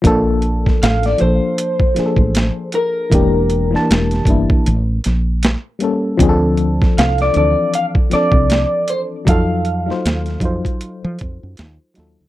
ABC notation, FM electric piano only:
X:1
M:4/4
L:1/16
Q:"Swing 16ths" 1/4=78
K:Bb
V:1 name="FM electric piano"
[F,B,DA]4- [F,B,DA] z [F,B,DA]3 z [F,B,D_A=A]4- [F,B,D_A=A] z | [=E,B,DG]3 [E,B,Da]3 [E,B,D=E]2 z6 [G,B,^CA]2 | [F,CD_A=A]4- [F,CD_A=A] z [=E,F,CDA]3 z [F,CDA]4- [F,CDA] z | [_G,EFA]3 [G,EFc]3 [G,EFc]6- [G,EFc] z [G,EFA]2 |]